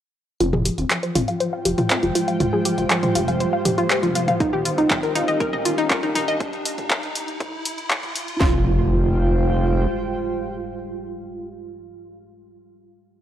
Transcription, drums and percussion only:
0.40 closed hi-hat soft
0.53 mid tom medium
0.65 open hi-hat loud
0.78 closed hi-hat soft
0.90 clap loud
0.90 closed hi-hat soft
1.03 closed hi-hat soft
1.15 mid tom medium
1.15 open hi-hat medium
1.28 closed hi-hat soft
1.40 closed hi-hat soft
1.65 open hi-hat loud
1.78 closed hi-hat soft
1.78 mid tom medium
1.90 clap loud
1.90 closed hi-hat soft
2.03 closed hi-hat soft
2.15 open hi-hat medium
2.28 closed hi-hat soft
2.40 closed hi-hat soft
2.40 mid tom medium
2.65 open hi-hat loud
2.78 closed hi-hat soft
2.90 clap loud
2.90 closed hi-hat soft
3.03 closed hi-hat soft
3.03 mid tom medium
3.15 open hi-hat medium
3.28 closed hi-hat soft
3.40 closed hi-hat soft
3.65 mid tom medium
3.65 open hi-hat loud
3.78 closed hi-hat soft
3.90 clap loud
3.90 closed hi-hat soft
4.03 closed hi-hat soft
4.15 open hi-hat medium
4.28 closed hi-hat soft
4.28 mid tom medium
4.40 kick loud
4.40 closed hi-hat soft
4.65 open hi-hat loud
4.78 closed hi-hat soft
4.90 kick loud
4.90 clap loud
4.90 closed hi-hat soft
4.90 mid tom medium
5.03 closed hi-hat soft
5.15 open hi-hat loud
5.28 closed hi-hat soft
5.40 kick loud
5.40 closed hi-hat soft
5.53 mid tom medium
5.65 open hi-hat loud
5.78 closed hi-hat soft
5.90 kick loud
5.90 clap loud
5.90 closed hi-hat soft
6.03 closed hi-hat soft
6.15 mid tom medium
6.15 open hi-hat medium
6.28 closed hi-hat soft
6.40 kick loud
6.40 closed hi-hat soft
6.53 closed hi-hat soft
6.65 open hi-hat loud
6.78 closed hi-hat soft
6.78 mid tom medium
6.90 kick loud
6.90 clap loud
6.90 closed hi-hat soft
7.03 closed hi-hat soft
7.15 open hi-hat medium
7.28 closed hi-hat soft
7.40 kick loud
7.40 closed hi-hat soft
7.40 mid tom medium
7.65 open hi-hat loud
7.78 closed hi-hat soft
7.90 kick loud
7.90 clap loud
7.90 closed hi-hat soft
8.03 closed hi-hat soft
8.03 mid tom medium
8.15 open hi-hat medium
8.28 closed hi-hat soft
8.40 kick loud
8.40 snare loud
8.40 clap medium

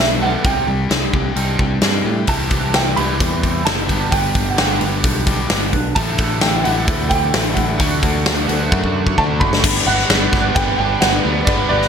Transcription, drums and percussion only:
0.44 kick loud
0.44 open hi-hat soft
0.91 snare medium
0.91 open hi-hat medium
1.14 kick medium
1.36 open hi-hat medium
1.59 kick medium
1.81 snare loud
1.81 open hi-hat medium
2.27 kick medium
2.27 open hi-hat medium
2.50 kick medium
2.50 open hi-hat medium
2.74 snare loud
2.74 open hi-hat medium
2.97 open hi-hat soft
3.20 kick loud
3.20 open hi-hat medium
3.43 kick medium
3.43 open hi-hat medium
3.66 snare loud
3.66 open hi-hat medium
3.89 kick medium
3.89 open hi-hat soft
4.12 kick medium
4.12 open hi-hat medium
4.35 kick medium
4.35 open hi-hat medium
4.58 snare loud
4.58 open hi-hat medium
4.81 open hi-hat medium
5.04 kick loud
5.04 open hi-hat medium
5.26 kick medium
5.26 open hi-hat medium
5.50 snare loud
5.50 open hi-hat medium
5.73 kick medium
5.73 open hi-hat soft
5.96 kick loud
5.96 open hi-hat medium
6.18 kick medium
6.18 open hi-hat medium
6.41 snare loud
6.41 open hi-hat medium
6.65 open hi-hat soft
6.87 kick loud
6.87 open hi-hat medium
7.10 kick medium
7.10 open hi-hat soft
7.34 snare loud
7.34 open hi-hat medium
7.56 kick medium
7.56 open hi-hat medium
7.79 kick loud
7.79 open hi-hat medium
8.03 kick medium
8.03 open hi-hat medium
8.26 snare loud
8.26 open hi-hat medium
8.49 open hi-hat medium
8.72 kick loud
8.84 kick medium
9.07 kick medium
9.18 kick medium
9.41 kick medium
9.53 snare medium
9.64 kick loud
9.64 crash loud
9.64 crash medium
9.99 snare soft
10.10 snare loud
10.10 crash medium
10.33 kick medium
10.33 snare soft
10.56 kick loud
10.56 crash medium
11.02 snare loud
11.02 crash medium
11.47 kick loud
11.47 crash medium
11.82 snare soft

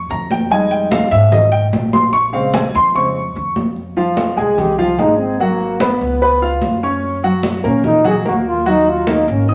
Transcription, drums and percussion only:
0.10 high conga soft
0.31 high conga medium
0.51 high conga soft
0.71 high conga soft
0.92 high conga loud
1.12 high conga soft
1.32 high conga soft
1.32 low conga medium
1.52 high conga soft
1.73 high conga medium
1.93 high conga medium
2.14 high conga soft
2.34 high conga soft
2.54 high conga loud
2.74 high conga soft
2.95 high conga soft
3.15 high conga soft
3.35 high conga soft
3.56 high conga medium
3.76 high conga soft
3.97 high conga soft
4.17 high conga medium
4.38 high conga soft
4.58 high conga soft
4.58 low conga medium
4.78 high conga soft
4.99 high conga medium
5.40 high conga soft
5.61 high conga soft
5.80 high conga loud
6.01 high conga soft
6.21 high conga soft
6.42 high conga soft
6.62 high conga medium
7.03 high conga soft
7.23 high conga soft
7.43 high conga medium
7.64 high conga soft
7.84 high conga soft
7.84 low conga medium
8.05 high conga soft
8.05 low conga medium
8.26 high conga medium
8.66 high conga soft
8.87 high conga soft
9.07 high conga medium
9.28 high conga soft
9.49 high conga soft

